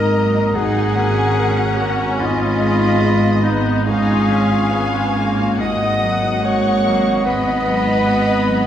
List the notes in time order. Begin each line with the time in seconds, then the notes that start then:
Already playing: G#1 G#2 G#3 A#3 D#4 A#4 D#5 A#5
0.14 F#3 A#3
0.35 D#4
0.54 G#1 G#2 D#4 F#4 G#4 F#5 G#5 A#5
0.77 F#4
0.96 A#3 C#4
1.18 F#4
1.38 A#4
1.59 F#4
1.77 A#3 F#4 F#5
1.99 F#4
2.19 G#2 B3 D#4 F4 D#5 F5 B5
2.41 D#4
2.60 G#3
2.81 D#4
3.00 G#3 G#4
3.23 D#4
3.43 G#3 B3 D#4 D#5
3.67 D#4
3.86 G#2 C#4 D#4 F4 G#4 C#5 F5 G#5
4.11 F4
4.29 G#3 C#4
4.52 F4
4.70 B3 G#4
4.94 F4
5.15 G#3 A#3
5.39 F4
5.59 G#1 G#2 G#3 A#3 F#4 D#5 F#5 D#6
5.82 D#4
6.01 F#3
6.23 D#4
6.43 G#3 F#4 C#5 C#6
6.65 D#4
6.84 F#3 A#3
7.07 D#4
7.25 G#2 B3 D#4 B4 D#5 B5
7.48 D#4
7.67 F#3
7.87 D#4
8.07 F#4
8.28 D#4
8.48 F#3